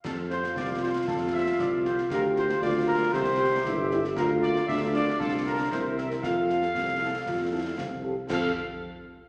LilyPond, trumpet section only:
\new Staff \with { instrumentName = "Trumpet section" } { \time 2/4 \key f \major \tempo 4 = 116 a'8 c''8 d''8 c''8 | a'8 e''8 d''8 c''8 | bes'8 c''8 d''8 bes'8 | c''4. r8 |
bes'8 d''8 e''8 d''8 | a'8 bes'8 c''8 e''8 | f''2~ | f''4. r8 |
f''8 r4. | }